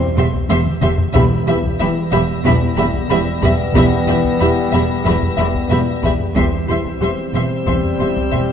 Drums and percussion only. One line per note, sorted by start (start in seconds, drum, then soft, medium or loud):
0.01 taiko low medium
0.33 taiko medium
0.49 taiko high medium
0.66 taiko mid medium
0.81 taiko mid loud
0.98 taiko low medium
1.14 taiko loud
1.63 taiko medium
2.45 taiko medium
2.61 taiko low medium
2.93 taiko medium
3.42 taiko medium
3.59 taiko low medium
3.74 taiko medium
4.24 taiko medium
5.06 taiko medium
5.22 taiko low medium
5.54 taiko medium
6.03 taiko medium
6.20 taiko low soft
6.37 taiko loud
6.86 taiko medium
7.67 taiko medium
7.84 taiko low medium
8.16 taiko medium